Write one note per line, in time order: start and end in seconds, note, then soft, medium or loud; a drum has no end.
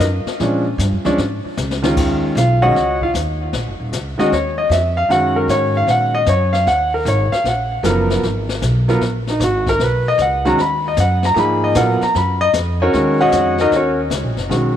0.00 0.24 F#2 loud
0.00 snare medium
0.00 hi-hat pedal medium
0.25 muted upright bass stroke soft
0.25 snare soft
0.40 0.78 A#2 medium
0.40 0.63 F3 medium
0.40 0.64 G#3 medium
0.40 0.64 C#4 medium
0.40 0.64 D4 medium
0.40 brush sweep medium
0.40 snare medium
0.78 0.93 G2 loud
0.78 snare medium
0.78 hi-hat pedal medium
0.92 1.04 F2 medium
1.05 1.17 D2 medium
1.05 1.17 F3 medium
1.05 1.17 G#3 medium
1.05 1.17 C#4 medium
1.05 1.17 D4 loud
1.05 snare soft
1.18 1.42 G#2 medium
1.18 brush sweep soft
1.18 snare soft
1.45 muted upright bass stroke soft
1.57 1.95 C#2 loud
1.57 snare medium
1.57 hi-hat pedal medium
1.71 snare medium
1.82 2.33 D#3 medium
1.82 2.33 G#3 medium
1.82 2.33 C#4 medium
1.82 2.34 F4 medium
1.82 snare loud
1.96 2.34 D#2 medium
1.96 brush sweep soft
1.96 kick medium
1.96 snare soft
1.96 crash medium
2.35 2.73 B1 loud
2.35 2.63 F4 medium
2.35 2.62 F5 medium
2.35 snare medium
2.35 hi-hat pedal medium
2.62 2.74 D#3 medium
2.62 2.74 G#3 medium
2.62 2.74 C#4 medium
2.62 2.98 F#4 medium
2.62 2.98 C#5 medium
2.62 2.98 D#5 medium
2.62 2.98 F#5 loud
2.75 3.13 C#2 medium
2.75 brush sweep soft
2.75 snare soft
3.01 3.10 F4 medium
3.01 3.10 F5 medium
3.01 kick medium
3.14 3.52 D#2 medium
3.14 snare medium
3.14 hi-hat pedal medium
3.53 3.67 A#1 medium
3.53 brush sweep medium
3.53 snare medium
3.67 3.79 F#1 medium
3.80 3.92 D#1 medium
3.93 4.17 C#2 medium
3.93 snare medium
3.93 hi-hat pedal medium
4.18 4.30 D#3 medium
4.18 4.30 G#3 medium
4.18 4.31 C#4 medium
4.18 4.31 F#4 medium
4.18 4.32 D#5 medium
4.18 muted upright bass stroke soft
4.18 snare soft
4.32 4.69 D#2 medium
4.32 4.58 C#5 medium
4.32 brush sweep medium
4.32 snare soft
4.58 4.71 D#5 medium
4.69 5.08 F2 loud
4.69 4.96 E5 medium
4.69 snare medium
4.69 hi-hat pedal medium
4.97 5.10 F5 loud
5.08 5.47 F#2 medium
5.08 6.19 D#3 medium
5.08 6.19 G#3 medium
5.08 6.19 C#4 medium
5.08 6.20 F#4 medium
5.08 5.36 F#5 loud
5.08 brush sweep medium
5.08 snare soft
5.36 5.49 A#4 medium
5.48 5.86 G#2 medium
5.48 5.75 C#5 loud
5.48 snare medium
5.48 hi-hat pedal medium
5.77 5.89 F5 loud
5.87 6.25 A#2 medium
5.87 6.14 F#5 loud
5.87 brush sweep medium
5.87 snare soft
6.15 6.27 D#5 loud
6.26 6.65 F#2 loud
6.26 6.53 C#5 medium
6.26 snare medium
6.26 hi-hat pedal medium
6.53 6.66 F5 loud
6.53 snare soft
6.66 7.04 D#2 medium
6.66 6.92 F#5 loud
6.66 brush sweep medium
6.66 snare medium
6.94 7.06 A#4 medium
7.05 7.29 G#1 loud
7.05 7.32 C#5 medium
7.05 snare medium
7.05 hi-hat pedal medium
7.32 7.45 F5 medium
7.32 muted upright bass stroke soft
7.32 snare soft
7.44 7.82 A#1 medium
7.44 brush sweep medium
7.44 snare soft
7.48 8.21 F#5 medium
7.83 8.21 F#1 medium
7.83 8.23 F3 medium
7.83 8.23 F#3 medium
7.83 8.23 B3 medium
7.83 8.24 A#4 medium
7.83 snare medium
7.83 hi-hat pedal medium
8.10 snare soft
8.23 8.61 G#1 medium
8.23 brush sweep medium
8.23 snare medium
8.49 snare medium
8.62 9.00 B1 medium
8.62 snare medium
8.62 hi-hat pedal medium
8.88 9.00 F#3 medium
8.88 9.00 B3 medium
8.88 9.00 F4 medium
8.88 9.01 A#4 medium
8.88 snare soft
9.01 9.39 A#1 medium
9.01 brush sweep soft
9.01 snare soft
9.27 9.41 D#4 medium
9.27 snare soft
9.40 9.77 G#1 loud
9.40 snare medium
9.40 hi-hat pedal medium
9.44 9.67 F#4 medium
9.67 9.81 A#4 loud
9.67 kick medium
9.67 snare soft
9.78 10.17 B1 medium
9.78 brush sweep medium
9.78 snare medium
9.83 10.06 B4 medium
10.08 10.20 D#5 loud
10.18 10.56 C#2 loud
10.18 snare medium
10.18 hi-hat pedal medium
10.22 10.46 F#5 medium
10.45 10.57 D#3 medium
10.45 10.57 G#3 medium
10.45 10.57 C#4 medium
10.45 10.57 F#4 medium
10.45 10.59 A#5 loud
10.45 snare soft
10.57 10.96 D#2 medium
10.57 10.85 B5 loud
10.57 brush sweep medium
10.57 snare soft
10.88 10.99 D#5 medium
10.97 11.35 F#2 loud
10.97 11.24 F#5 medium
10.97 snare medium
10.97 hi-hat pedal medium
11.23 11.33 A#5 loud
11.23 snare soft
11.34 11.74 G#2 medium
11.34 11.74 F3 medium
11.34 11.74 A#3 medium
11.34 11.74 D#4 medium
11.34 11.74 G#4 medium
11.34 11.37 A#5 medium
11.34 brush sweep medium
11.34 snare medium
11.39 11.63 B5 loud
11.64 11.76 D#5 medium
11.75 11.99 A#2 loud
11.75 11.99 F#3 medium
11.75 11.99 B3 medium
11.75 11.99 F4 medium
11.75 12.00 A#4 medium
11.75 12.01 F#5 medium
11.75 snare medium
11.75 hi-hat pedal medium
12.01 12.15 A#5 loud
12.01 muted upright bass stroke soft
12.01 snare soft
12.14 12.53 F#2 medium
12.14 12.41 B5 medium
12.14 brush sweep medium
12.14 snare medium
12.41 12.49 D#5 loud
12.53 12.92 F2 loud
12.53 snare medium
12.53 hi-hat pedal medium
12.82 12.92 C#4 medium
12.82 12.93 F#4 medium
12.82 13.18 A#4 medium
12.82 13.17 C#5 medium
12.93 13.31 D#2 medium
12.93 13.53 D#3 medium
12.93 13.53 G#3 medium
12.93 13.53 C#4 medium
12.93 13.20 F#4 medium
12.93 brush sweep soft
12.93 snare medium
13.21 13.57 F#4 medium
13.21 13.56 C#5 medium
13.21 13.57 D#5 medium
13.21 13.56 F#5 loud
13.32 13.70 F2 loud
13.32 snare medium
13.32 hi-hat pedal medium
13.58 13.72 D#4 medium
13.58 13.72 F#4 medium
13.58 13.72 A#4 medium
13.58 13.72 D#5 loud
13.58 snare soft
13.71 14.09 D#2 medium
13.71 brush sweep soft
13.71 snare soft
13.75 13.99 C#4 medium
13.75 13.98 F#4 medium
13.75 13.99 A#4 medium
13.75 13.99 C#5 medium
14.10 14.24 C#2 loud
14.10 snare medium
14.10 hi-hat pedal medium
14.24 14.36 A#1 medium
14.36 14.48 F#1 medium
14.36 snare soft
14.49 14.77 B1 medium
14.49 14.73 D#3 medium
14.49 14.73 G#3 medium
14.49 14.73 C#4 soft
14.49 14.73 F#4 medium
14.49 brush sweep soft
14.49 snare medium